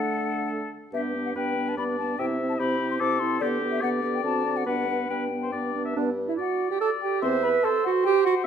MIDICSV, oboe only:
0, 0, Header, 1, 2, 480
1, 0, Start_track
1, 0, Key_signature, 1, "major"
1, 0, Tempo, 423729
1, 1057, Time_signature, 3, 2, 24, 8
1, 2012, Tempo, 411523
1, 4892, Tempo, 428571
1, 7292, Tempo, 412655
1, 9710, End_track
2, 0, Start_track
2, 0, Title_t, "Oboe"
2, 0, Program_c, 0, 68
2, 0, Note_on_c, 0, 69, 43
2, 784, Note_off_c, 0, 69, 0
2, 1051, Note_on_c, 0, 67, 41
2, 1500, Note_off_c, 0, 67, 0
2, 1537, Note_on_c, 0, 71, 42
2, 2003, Note_off_c, 0, 71, 0
2, 2009, Note_on_c, 0, 74, 45
2, 2495, Note_on_c, 0, 76, 50
2, 2512, Note_off_c, 0, 74, 0
2, 2965, Note_on_c, 0, 67, 46
2, 2982, Note_off_c, 0, 76, 0
2, 3443, Note_on_c, 0, 69, 52
2, 3461, Note_off_c, 0, 67, 0
2, 3929, Note_on_c, 0, 67, 53
2, 3947, Note_off_c, 0, 69, 0
2, 4388, Note_on_c, 0, 74, 62
2, 4405, Note_off_c, 0, 67, 0
2, 5353, Note_off_c, 0, 74, 0
2, 5360, Note_on_c, 0, 71, 44
2, 5795, Note_off_c, 0, 71, 0
2, 5846, Note_on_c, 0, 71, 39
2, 6012, Note_off_c, 0, 71, 0
2, 6213, Note_on_c, 0, 72, 37
2, 6316, Note_off_c, 0, 72, 0
2, 6323, Note_on_c, 0, 74, 45
2, 6686, Note_off_c, 0, 74, 0
2, 6691, Note_on_c, 0, 76, 40
2, 6813, Note_off_c, 0, 76, 0
2, 7274, Note_on_c, 0, 74, 49
2, 7734, Note_off_c, 0, 74, 0
2, 7763, Note_on_c, 0, 74, 55
2, 8246, Note_off_c, 0, 74, 0
2, 8259, Note_on_c, 0, 76, 57
2, 8756, Note_on_c, 0, 72, 58
2, 8774, Note_off_c, 0, 76, 0
2, 9669, Note_off_c, 0, 72, 0
2, 9710, End_track
0, 0, End_of_file